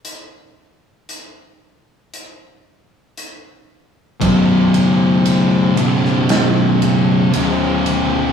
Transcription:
<<
  \new Staff \with { instrumentName = "Distorted electric guitar" } { \clef bass \time 4/4 \key b \minor \tempo 4 = 58 r1 | <b,, fis, b,>4. <b,, fis, b,>4. <b,, fis, b,>4 | }
  \new Staff \with { instrumentName = "Picked electric bass" } { \clef bass \time 4/4 \key b \minor r1 | b,,,8 fis,,8 fis,,4 gis,,8 fis,,8 d,,4 | }
  \new DrumStaff \with { instrumentName = "Drums" } \drummode { \time 4/4 hh4 hh4 hh4 hh4 | <bd cymr>8 cymr8 cymr8 cymr16 sn16 <cymr sn>8 cymr8 cymr8 cymr8 | }
>>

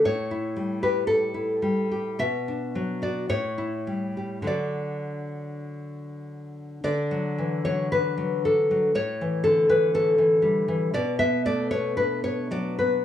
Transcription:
\new Staff \with { instrumentName = "Nylon-string guitar" } { \time 2/4 \key d \major \tempo 4 = 56 << { cis''8. b'16 a'4 | e''8. d''16 cis''4 | d''4 r4 | d''8. cis''16 b'8 a'8 |
cis''8 a'16 b'16 a'4 | d''16 e''16 d''16 cis''16 b'16 cis''16 d''16 b'16 | } \\ { a,16 e'16 g16 g'8 e'16 g16 g'16 | b,16 d'16 fis16 fis'16 a,16 e'16 g16 g'16 | <d fis d'>2 | d16 fis16 e16 fis16 d'16 fis16 d'16 fis16 |
a,16 e16 d16 e16 cis'16 e16 g16 e16 | b,16 b16 a16 b16 d'16 b16 fis16 b16 | } >> }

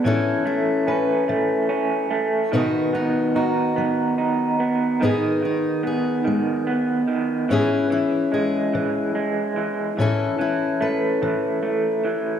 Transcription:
<<
  \new Staff \with { instrumentName = "Steel-string acoustic guitar" } { \time 6/8 \key a \lydian \tempo 4. = 48 << { <cis' e' a'>8 e'8 b'2 | <b dis' fis'>8 dis'8 fis'2 | <b dis' gis'>8 dis'8 gis'2 | <cis' e' gis'>8 e'8 gis'2 |
<cis' e' a'>8 e'8 b'2 | } \\ { a,4 r8 e4 r8 | b,4 r8 fis4 r8 | gis,4 r8 gis4 r8 | gis,4 r8 e4 r8 |
a,4 r8 e4 r8 | } >> }
  \new Staff \with { instrumentName = "Clean electric guitar" } { \clef bass \time 6/8 \key a \lydian e8 a8 cis'8 a8 cis'8 a8 | dis8 b8 dis'8 b8 dis'8 b8 | dis8 dis8 b8 dis8 b8 dis8 | e8 e8 gis8 e8 gis8 e8 |
e8 e8 a8 e8 a8 e8 | }
>>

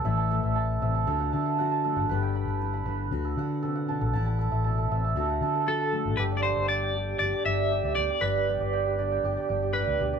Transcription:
<<
  \new Staff \with { instrumentName = "Hammered dulcimer" } { \time 4/4 \key g \major \tempo 4 = 118 e''16 a''16 a'16 e''16 a''16 r16 e''16 a''16 a'16 fis''16 a''16 a'16 fis''16 a''16 a'16 fis''16 | b'16 g''16 b''16 b'16 r16 b''16 b'16 r8 a'16 fis''16 r16 a'16 fis''16 a''16 a'16 | a''16 a''16 a'16 e''16 a''16 a'16 e''16 a''16 a'16 fis''16 a''16 a'16 fis''16 a''16 a'16 fis''16 | g'16 d''16 g''16 g'16 r16 g''16 g'16 r8 g'16 d''16 r16 g'16 d''16 g''16 g'16 |
d''16 g''16 g'16 d''16 g''16 g'16 d''16 g''16 g'16 d''16 g''16 g'16 d''16 g''16 g'16 d''16 | }
  \new Staff \with { instrumentName = "Clean electric guitar" } { \time 4/4 \key g \major r1 | r1 | r2. a'4 | b'16. d''32 c''8 d''4 d''8 e''4 d''8 |
b'2. b'4 | }
  \new Staff \with { instrumentName = "Steel-string acoustic guitar" } { \time 4/4 \key g \major << { e'8 a4. fis'8 d'8 fis'4 | g'4 e'4 fis'8 d'4. | e'8 a4. fis'8 d'8 fis'4 | r2 g'4 d'8 b8 |
r8 b4. g'2 | } \\ { a,4 r8 c8 d4. a8 | g,4. d8 d4 c8 b,8 | r4 b,8 c8 d4. a8 | g,4. d4 g,4. |
g,4. d4 g,8 a,8 b,8 | } >> }
  \new Staff \with { instrumentName = "Fingered electric bass" } { \clef bass \time 4/4 \key g \major a,,8. a,,8. a,,8 d,8 d4~ d16 aes,,16 | g,,8. g,,8. g,,8 d,8 d4~ d16 b,,16 | a,,8. a,,8. a,,8 d,8 d4~ d16 a,,16 | g,,8. g,,4~ g,,16 g,,16 r16 g,,8. d,16 d,16 r16 |
g,,8. g,,4~ g,,16 g,,16 r16 g,,8. d,16 d,16 r16 | }
>>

